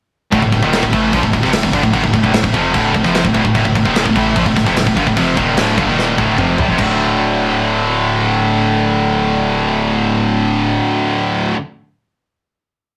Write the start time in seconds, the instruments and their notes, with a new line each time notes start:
0.32 sub bass D1, distorted electric guitar D2 A2, kick, crash
0.42 sub bass D1, distorted electric guitar D2 A2, kick
0.52 sub bass D1, distorted electric guitar D2 A2, kick, crash
0.62 sub bass D#1, distorted electric guitar D#2 A#2 D#3, kick
0.73 snare, crash
0.83 sub bass D1, distorted electric guitar D2 A2, kick
0.92 sub bass A1, distorted electric guitar A2 E3 A3, kick, crash
1.13 sub bass A#1, distorted electric guitar A#2 F3, kick, crash
1.23 sub bass D1, distorted electric guitar D2 A2, kick
1.33 sub bass D1, distorted electric guitar D2 A2, kick, crash
1.43 sub bass F1, distorted electric guitar F2 C3, kick, snare
1.53 sub bass D1, distorted electric guitar D2 A2, snare, crash
1.63 sub bass D1, distorted electric guitar D2 A2, kick
1.73 sub bass G1, distorted electric guitar G2 D3, kick, crash
1.83 sub bass D1, distorted electric guitar D2 A2, kick
1.93 sub bass G#1, distorted electric guitar G#2 D#3, kick, crash
2.04 sub bass D1, distorted electric guitar D2 A2, kick
2.13 sub bass D1, distorted electric guitar D2 A2, kick, crash
2.23 sub bass D1, distorted electric guitar D2 A2, kick
2.33 sub bass D1, distorted electric guitar D2 A2, snare, crash
2.42 sub bass D1, distorted electric guitar D2 A2, kick
2.53 sub bass F1, distorted electric guitar F2 C3 F3, kick, crash
2.73 sub bass D1, distorted electric guitar D2 A2 D3, kick, crash
2.94 sub bass D1, distorted electric guitar D2 A2, kick, crash
3.04 sub bass F1, distorted electric guitar F2 C3 F3, kick, snare
3.14 snare, crash
3.24 sub bass D1, distorted electric guitar D2 A2, kick
3.34 sub bass D1, distorted electric guitar D2 A2, kick, crash
3.45 sub bass D1, distorted electric guitar D2 A2, kick
3.54 sub bass D1, distorted electric guitar D2 A2, kick, crash
3.65 sub bass D1, distorted electric guitar D2 A2, kick
3.75 sub bass D1, distorted electric guitar D2 A2, kick, crash
3.85 sub bass D#1, distorted electric guitar D#2 A#2 D#3, kick
3.96 snare, crash
4.06 sub bass D1, distorted electric guitar D2 A2, kick
4.16 sub bass A1, distorted electric guitar A2 E3 A3, kick, crash
4.36 sub bass A#1, distorted electric guitar A#2 F3, kick, crash
4.46 sub bass D1, distorted electric guitar D2 A2, kick
4.56 sub bass D1, distorted electric guitar D2 A2, kick, snare, crash
4.66 sub bass F1, distorted electric guitar F2 C3, kick, snare
4.76 sub bass D1, distorted electric guitar D2 A2, snare, crash
4.86 sub bass D1, distorted electric guitar D2 A2, kick
4.96 sub bass G1, distorted electric guitar G2 D3, kick, crash
5.06 sub bass D1, distorted electric guitar D2 A2, kick
5.17 sub bass F1, distorted electric guitar F2 C3 F3, kick, crash
5.37 sub bass D#1, distorted electric guitar D#2 A#2 D#3, kick, crash
5.57 sub bass D1, distorted electric guitar D2 A2 D3, snare, crash
5.77 sub bass G1, distorted electric guitar G2 D3, kick, crash
5.88 sub bass D#1, distorted electric guitar D#2 A#2 D#3
5.99 snare
6.18 sub bass D1, distorted electric guitar D2 A2 D3, kick
6.38 sub bass F1, distorted electric guitar F2 C3 F3, mid tom
6.58 sub bass C2, distorted electric guitar C3 G3, floor tom
6.69 sub bass F1, distorted electric guitar F2 C3
6.78 sub bass D1, distorted electric guitar D2 A2, kick, crash
6.83 distorted electric guitar D3